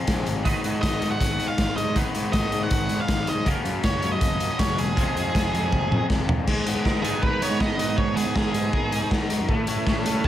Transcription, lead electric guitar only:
0.82 1.11 D#5 medium
1.11 1.46 F#5 medium
1.48 1.75 F5 loud
1.76 1.94 D#5 medium
2.33 2.62 D#5 medium
2.63 3.00 F#5 loud
3.01 3.26 F5 loud
3.29 3.46 D#5 medium
3.85 4.10 C#5 loud
4.12 4.60 D#5 loud
4.59 4.78 C#5 loud
4.78 6.05 G#4 medium
7.03 7.21 G#4 medium
7.22 7.42 B4 medium
7.42 7.61 C#5 medium
7.61 7.97 D#5 medium
7.98 8.16 C#5 medium
8.16 8.34 G#4 medium
8.37 9.09 G#4 medium

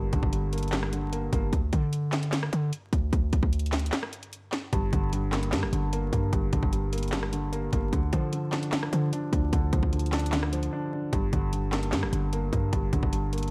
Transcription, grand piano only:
0.00 0.33 G2 loud
0.00 0.13 D3 medium
0.00 0.53 A#3 medium
0.13 0.91 D3 medium
0.33 0.71 G2 medium
0.53 1.11 A#3 medium
0.73 1.53 G2 medium
0.93 1.53 D3 medium
1.13 1.31 A#3 medium
1.33 1.53 A#3 medium
4.73 5.11 G2 loud
4.93 5.71 D3 medium
5.13 5.51 G2 medium
5.33 5.92 A#3 medium
5.53 6.31 G2 medium
5.73 6.51 D3 medium
5.93 6.11 A#3 medium
6.12 6.91 A#3 medium
6.33 6.71 G2 medium
6.53 7.31 D3 medium
6.72 7.11 G2 medium
6.93 7.51 A#3 medium
7.13 7.93 G2 medium
7.33 7.91 D3 medium
7.52 7.71 A#3 medium
7.73 7.93 A#3 medium
7.93 8.31 D3 loud
8.13 8.91 F3 medium
8.33 8.71 D3 medium
8.53 9.11 D4 medium
8.73 9.51 D3 medium
8.93 9.71 F3 medium
9.13 9.31 D4 medium
9.33 10.11 D4 medium
9.53 9.91 D3 medium
9.73 10.51 F3 medium
9.93 10.31 D3 medium
10.13 10.71 D4 medium
10.33 11.13 D3 medium
10.53 11.13 F3 medium
10.73 10.91 D4 medium
10.93 11.13 D4 medium
11.13 11.51 G2 loud
11.33 12.11 D3 medium
11.53 11.91 G2 medium
11.73 12.32 A#3 medium
11.93 12.71 G2 medium
12.13 12.91 D3 medium
12.33 12.51 A#3 medium
12.52 13.31 A#3 medium
12.73 13.11 G2 loud
12.93 13.51 D3 medium
13.13 13.51 G2 medium
13.33 13.51 A#3 medium

